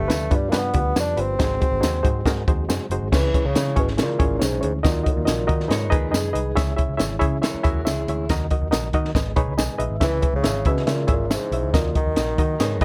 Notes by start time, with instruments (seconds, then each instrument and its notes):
Already playing: tonewheel organ F3 G3 B3 D4, bassoon A3
0.08 picked electric bass D2, reed electric piano D4 F4 G4 B4, snare, closed hi-hat, tambourine
0.31 picked electric bass G2, reed electric piano D4 F4 G4 B4, kick, closed hi-hat
0.35 bassoon G3
0.49 bassoon A#3, reed electric piano D4 F4 G4 B4, snare, closed hi-hat
0.53 picked electric bass G2, bassoon B3, tambourine
0.74 picked electric bass D2, reed electric piano D4 F4 G4 B4, kick, closed hi-hat
0.96 picked electric bass F2, reed electric piano D4 F4 G4 B4, snare, closed hi-hat, tambourine
1.00 bassoon D4
1.17 picked electric bass G1, bassoon C4, reed electric piano D4 F4 G4 B4, closed hi-hat
1.39 picked electric bass G#1, reed electric piano G#2 D#4 F#4 G#4 C5, tonewheel organ F#3 G#3 C4 D#4, kick, snare, closed hi-hat, tambourine
1.60 reed electric piano D#4 F#4 G#4 C5, kick, closed hi-hat
1.72 picked electric bass G#1
1.80 picked electric bass D#2, reed electric piano D#4 F#4 G#4 C5, snare, closed hi-hat, tambourine
2.03 picked electric bass G#2, reed electric piano D#4 F#4 G#4 C5, kick, closed hi-hat
2.25 picked electric bass G#2, reed electric piano D#4 F#4 G#4 A#4, kick, snare, closed hi-hat, tambourine
2.47 picked electric bass D#2, reed electric piano D#4 F#4 G#4 C5, kick, closed hi-hat
2.69 picked electric bass F#2, reed electric piano D#4 F#4 G#4 C5, snare, closed hi-hat, tambourine
2.90 picked electric bass F#1, reed electric piano D#4 F#4 G#4 C5, closed hi-hat
3.01 picked electric bass G#1
3.12 picked electric bass C#2, reed electric piano C#3 C#4 E4 G#4 C#5, tonewheel organ E3 G#3 C#4 E4, bassoon E3, kick, snare, crash, tambourine
3.34 reed electric piano C#4 E4 G#4 C#5, kick, closed hi-hat
3.45 picked electric bass C#2, bassoon C#3
3.55 picked electric bass C#3, reed electric piano C#4 E4 G#4 C#5, snare, closed hi-hat, tambourine
3.76 picked electric bass G#1, bassoon B2, reed electric piano C#4 E4 G#4 C#5, kick, closed hi-hat
3.88 snare
3.97 picked electric bass C#3, reed electric piano C#4 E4 G#4 C#5, snare, closed hi-hat, tambourine
4.03 bassoon A#2
4.19 picked electric bass G#1, reed electric piano C#4 E4 G#4 C#5, kick, closed hi-hat
4.39 picked electric bass B1, reed electric piano C#4 E4 G#4 C#5, snare, closed hi-hat, tambourine
4.44 bassoon G#2
4.61 picked electric bass D2, bassoon G#2, reed electric piano C#4 E4 G#4 C#5, closed hi-hat
4.83 picked electric bass D#2, bassoon A#2, reed electric piano D#3 D#4 F#4 A#4 D#5, tonewheel organ D#3 F#3 A#3 D#4, kick, snare, closed hi-hat, tambourine
5.03 reed electric piano D#4 F#4 A#4 D#5, kick, closed hi-hat
5.07 bassoon A#2
5.17 picked electric bass D#2
5.25 picked electric bass A#1, reed electric piano D#4 F#4 A#4 D#5, snare, closed hi-hat, tambourine
5.47 picked electric bass D#3, reed electric piano D#4 F#4 A#4 D#5, kick, closed hi-hat
5.60 snare
5.68 reed electric piano G#2 D#4 G#4 B4 D#5, picked electric bass G#2, tonewheel organ G#3 B4, clean electric guitar A#4 C#5, snare, closed hi-hat, tambourine
5.90 picked electric bass D#2, reed electric piano D#4 G#4 B4 D#5, clean electric guitar G#4 B4, kick, closed hi-hat
6.11 picked electric bass F#2, reed electric piano D#4 G#4 B4 D#5, clean electric guitar G#4, snare, closed hi-hat, tambourine
6.33 picked electric bass C2, reed electric piano D#4 G#4 B4 D#5, closed hi-hat
6.56 picked electric bass C#2, reed electric piano C#3 E4 G#4 C#5 E5, tonewheel organ E3 C#4 E4, kick, snare, closed hi-hat, tambourine
6.76 reed electric piano E4 G#4 C#5 E5, kick, closed hi-hat
6.88 picked electric bass C#2
6.97 picked electric bass G#1, reed electric piano E4 G#4 C#5 E5, snare, closed hi-hat, tambourine
7.19 picked electric bass C#3, reed electric piano E4 G#4 C#5 E5, kick, closed hi-hat
7.42 reed electric piano E4 G#4 C#5 E5, clean electric guitar A#4 C#5, snare, closed hi-hat, tambourine
7.55 muted picked electric bass stroke
7.63 picked electric bass D#2, reed electric piano E4 G#4 C#5 E5, clean electric guitar F#4 A#4, kick, closed hi-hat
7.85 picked electric bass C#2, reed electric piano E4 G#4 C#5 E5, clean electric guitar E4 G#4, snare, closed hi-hat, tambourine
8.08 picked electric bass D2, reed electric piano E4 G#4 C#5 E5, closed hi-hat
8.28 picked electric bass D#2, tonewheel organ D#3 F#3 A#3 D#4, reed electric piano D#3 D#4 F#4 A#4 D#5, kick, snare, closed hi-hat, tambourine
8.51 reed electric piano D#4 F#4 A#4 D#5, kick, closed hi-hat
8.62 picked electric bass D#2
8.71 picked electric bass A#1, reed electric piano D#4 F#4 A#4 D#5, snare, closed hi-hat, tambourine
8.93 picked electric bass D#3, reed electric piano D#4 F#4 A#4 D#5, kick, closed hi-hat
9.05 snare
9.13 picked electric bass G#1, reed electric piano G#2 D#4 G#4 B4 D#5, tonewheel organ G#3 B3, kick, snare, closed hi-hat, tambourine
9.26 picked electric bass G#1
9.36 picked electric bass B1, reed electric piano D#4 G#4 B4 C#5 B5, kick, closed hi-hat
9.48 picked electric bass C#2
9.58 picked electric bass B1, reed electric piano D#4 G#4 B4 D#5 G#5, snare, closed hi-hat, tambourine
9.78 picked electric bass A#1, reed electric piano D#4 G#4 B4 D#5 E5, closed hi-hat
9.90 picked electric bass G#1
10.00 picked electric bass C#2, reed electric piano C#3 E4 G#4 C#5 E5, tonewheel organ E3 G#3 C#4 E4, bassoon E3, kick, snare, closed hi-hat, tambourine
10.21 reed electric piano E4 G#4 C#5 E5, kick, closed hi-hat
10.34 picked electric bass C#2, bassoon C#3
10.43 picked electric bass G#1, reed electric piano E4 G#4 C#5 E5, snare, closed hi-hat, tambourine
10.65 bassoon B2, picked electric bass C#3, reed electric piano E4 G#4 C#5 E5, kick, closed hi-hat
10.77 snare
10.87 bassoon A#2, picked electric bass C#3, reed electric piano E4 G#4 C#5 E5, snare, closed hi-hat, tambourine
11.07 picked electric bass G#1, reed electric piano E4 G#4 C#5 E5, kick, closed hi-hat
11.12 bassoon A#2
11.30 bassoon G#2, reed electric piano E4 G#4 C#5 E5, snare, closed hi-hat, tambourine
11.52 picked electric bass B1, reed electric piano E4 G#4 C#5 E5, closed hi-hat
11.63 picked electric bass C#2
11.73 picked electric bass D#2, bassoon A#2, reed electric piano D#3 D#4 F#4 A#4 D#5, tonewheel organ D#3 F#3 A#3 D#4, kick, snare, closed hi-hat, tambourine
11.95 bassoon D#3, reed electric piano D#4 F#4 A#4 D#5, kick, closed hi-hat
12.06 picked electric bass D#2
12.16 picked electric bass A#1, reed electric piano D#4 F#4 A#4 D#5, snare, closed hi-hat, tambourine
12.38 picked electric bass D#3, reed electric piano D#4 F#4 A#4 D#5, kick, closed hi-hat
12.60 picked electric bass G#2, reed electric piano G#2 D#4 G#4 B4 D#5, tonewheel organ G#3 B3 D#4, clean electric guitar A#4 C#5, snare, closed hi-hat, tambourine
12.81 picked electric bass D#2, reed electric piano G#4 B4 F#5, clean electric guitar B4, kick, closed hi-hat